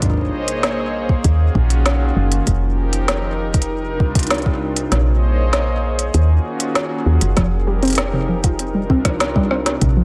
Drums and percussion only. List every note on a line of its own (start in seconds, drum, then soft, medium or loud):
0.02 kick medium
0.02 closed hi-hat soft
0.06 kick medium
0.10 kick soft
0.14 kick soft
0.17 kick soft
0.21 kick soft
0.25 kick soft
0.29 kick soft
0.48 closed hi-hat medium
0.63 snare loud
0.63 closed hi-hat soft
1.09 kick loud
1.24 kick loud
1.24 closed hi-hat soft
1.55 kick loud
1.70 closed hi-hat medium
1.86 snare loud
1.86 closed hi-hat soft
2.32 closed hi-hat medium
2.47 kick medium
2.47 closed hi-hat soft
2.93 closed hi-hat medium
3.08 snare loud
3.08 closed hi-hat soft
3.54 kick loud
3.54 closed hi-hat medium
3.62 closed hi-hat soft
4.00 kick loud
4.15 kick loud
4.15 closed hi-hat medium
4.19 closed hi-hat soft
4.23 closed hi-hat soft
4.27 snare loud
4.27 closed hi-hat soft
4.31 closed hi-hat medium
4.34 closed hi-hat soft
4.38 closed hi-hat soft
4.42 kick loud
4.42 closed hi-hat soft
4.77 closed hi-hat medium
4.92 snare medium
4.92 closed hi-hat medium
5.53 snare loud
5.53 closed hi-hat soft
5.99 closed hi-hat medium
6.14 closed hi-hat medium
6.60 closed hi-hat medium
6.75 snare loud
6.75 closed hi-hat medium
7.21 closed hi-hat medium
7.37 kick medium
7.37 cross-stick medium
7.37 snare medium
7.37 closed hi-hat medium
7.83 closed hi-hat soft
7.85 closed hi-hat soft
7.88 closed hi-hat soft
7.90 closed hi-hat soft
7.93 closed hi-hat medium
7.95 cross-stick medium
7.95 snare loud
7.95 closed hi-hat medium
7.98 closed hi-hat medium
8.44 kick loud
8.44 closed hi-hat medium
8.59 closed hi-hat medium
8.90 kick loud
9.05 kick loud
9.05 cross-stick medium
9.05 closed hi-hat medium
9.20 snare loud
9.20 closed hi-hat medium
9.36 kick loud
9.51 cross-stick medium
9.66 snare medium
9.66 closed hi-hat medium
9.82 kick medium
9.82 closed hi-hat medium